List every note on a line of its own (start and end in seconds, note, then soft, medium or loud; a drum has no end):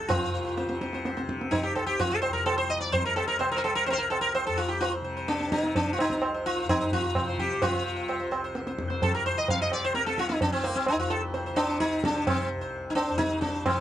0.00 1.75 C2 medium
0.00 0.66 C3 medium
0.08 2.29 F2 medium
0.08 0.76 F4 medium
0.08 0.32 C5 soft
0.08 tabla tin loud
0.08 tabla ge loud
0.34 0.43 C5 soft
0.45 0.56 C5 soft
0.57 0.67 C5 soft
0.57 tabla te medium
0.66 1.21 C3 medium
0.66 0.80 C5 soft
0.66 tabla te medium
0.81 0.93 C5 soft
0.81 tabla ke medium
0.93 1.04 C5 soft
0.93 tabla te medium
1.05 1.15 C5 soft
1.05 tabla te medium
1.17 1.39 C5 soft
1.17 tabla te medium
1.21 2.85 C3 medium
1.29 tabla ke medium
1.41 tabla te medium
1.51 1.64 D#4 medium
1.51 tabla tin medium
1.51 tabla ge medium
1.63 1.75 G4 medium
1.75 3.92 C2 medium
1.75 1.86 A4 medium
1.75 tabla na medium
1.86 1.99 G4 medium
1.99 2.12 F4 loud
1.99 tabla tin medium
1.99 tabla ge medium
2.11 2.21 A4 medium
2.22 2.33 C5 loud
2.22 tabla na medium
2.29 4.47 F2 medium
2.29 2.45 A#4 medium
2.46 2.57 A4 loud
2.46 tabla na medium
2.58 2.70 C5 loud
2.70 2.80 D#5 loud
2.81 3.39 C3 medium
2.81 2.93 D5 loud
2.92 3.05 C5 loud
2.92 tabla tin medium
2.92 tabla ge medium
3.05 3.16 A#4 medium
3.16 3.27 A4 medium
3.16 tabla na medium
3.28 3.39 A#4 medium
3.39 5.01 C3 medium
3.39 3.51 C5 medium
3.39 tabla na medium
3.52 3.55 A#4 medium
3.56 3.63 A#4 medium
3.56 3.59 C5 medium
3.64 3.75 A4 medium
3.64 tabla na medium
3.75 3.86 A#4 loud
3.86 3.90 C5 loud
3.86 tabla tin medium
3.90 6.10 C2 medium
3.90 3.93 A#4 medium
3.90 3.99 C5 loud
3.98 4.10 A#4 medium
4.10 4.21 A4 medium
4.10 tabla na medium
4.21 4.34 A#4 loud
4.35 4.46 C5 medium
4.35 tabla na medium
4.47 6.64 F2 medium
4.47 4.59 A4 medium
4.57 4.70 F4 medium
4.69 4.81 G4 medium
4.81 4.92 F4 medium
4.81 tabla tin medium
4.93 5.03 C5 soft
5.01 5.55 C3 medium
5.01 5.16 C5 soft
5.17 5.39 C5 soft
5.28 5.51 D4 medium
5.28 tabla te medium
5.40 5.62 C5 soft
5.40 tabla te medium
5.52 7.18 C3 medium
5.52 5.75 D#4 medium
5.52 tabla ke medium
5.63 tabla te medium
5.75 5.93 D4 medium
5.75 tabla tin medium
5.75 tabla ge medium
5.93 5.99 F4 medium
5.99 6.46 D#4 loud
5.99 tabla na medium
6.10 8.25 C2 medium
6.10 6.21 C5 soft
6.10 tabla ke medium
6.22 6.33 C5 soft
6.22 tabla na medium
6.34 6.56 C5 soft
6.46 6.69 F4 medium
6.58 6.79 C5 soft
6.64 8.79 F2 medium
6.69 6.93 D#4 loud
6.69 tabla na medium
6.69 tabla ge medium
6.81 7.02 C5 soft
6.92 7.41 F4 loud
6.92 tabla ge medium
7.15 7.72 C3 medium
7.15 7.27 C5 soft
7.15 tabla na medium
7.15 tabla ge medium
7.28 7.49 C5 soft
7.38 7.63 G4 medium
7.38 tabla ge medium
7.51 7.72 C5 soft
7.62 8.28 F4 loud
7.62 tabla tin loud
7.62 tabla ge medium
7.72 9.33 C3 medium
7.72 7.83 C5 soft
7.84 7.95 C5 soft
7.96 8.07 C5 soft
8.08 8.18 C5 soft
8.08 tabla na medium
8.20 8.30 C5 soft
8.26 10.41 C2 medium
8.31 8.43 C5 soft
8.31 tabla na medium
8.44 8.55 C5 soft
8.55 8.66 C5 soft
8.55 tabla te medium
8.67 8.89 C5 soft
8.67 tabla te medium
8.79 10.95 F2 medium
8.79 tabla ke medium
8.90 9.12 C5 soft
8.90 tabla te medium
9.02 9.13 A4 medium
9.02 tabla tin medium
9.02 tabla ge medium
9.15 9.25 A#4 medium
9.26 9.38 C5 medium
9.33 9.88 C3 medium
9.38 9.48 D#5 loud
9.48 9.61 F5 loud
9.48 tabla tin medium
9.48 tabla ge medium
9.62 9.73 D#5 loud
9.72 9.84 D5 loud
9.72 tabla na medium
9.85 11.50 C3 medium
9.85 9.94 C5 medium
9.94 10.06 A#4 loud
9.94 tabla te medium
10.06 10.18 A4 medium
10.06 tabla te medium
10.18 10.29 F4 loud
10.18 tabla ke medium
10.29 10.41 D#4 medium
10.29 tabla te medium
10.41 12.55 C2 medium
10.41 10.52 D4 medium
10.41 tabla tin medium
10.41 tabla ge medium
10.52 10.65 C4 medium
10.64 10.76 A#3 medium
10.64 tabla na medium
10.76 10.88 C4 medium
10.86 10.99 D#4 medium
10.86 tabla na medium
10.95 13.09 F2 medium
11.00 11.12 F4 medium
11.10 11.21 A4 medium
11.10 tabla na medium
11.34 11.45 C5 soft
11.34 tabla tin medium
11.46 12.02 C3 medium
11.46 11.66 C5 soft
11.56 11.78 D4 loud
11.56 tabla na medium
11.68 11.90 C5 soft
11.80 12.04 D#4 loud
11.80 tabla ke medium
11.92 12.13 C5 soft
12.02 13.63 C3 medium
12.02 12.27 D4 loud
12.02 tabla ke medium
12.15 12.37 C5 soft
12.27 12.49 C4 medium
12.27 tabla na loud
12.27 tabla ge medium
12.38 12.60 C5 soft
12.55 13.80 C2 medium
12.61 12.83 C5 soft
12.90 12.95 D#4 medium
12.95 13.17 D4 medium
12.95 tabla na medium
13.09 13.80 F2 medium
13.09 13.30 C5 soft
13.18 13.41 D#4 loud
13.18 tabla ke medium
13.32 13.53 C5 soft
13.41 13.65 D4 medium
13.41 tabla ke medium
13.54 13.76 C5 soft
13.63 13.80 C3 medium
13.63 13.80 C4 medium
13.63 tabla na loud
13.63 tabla ge medium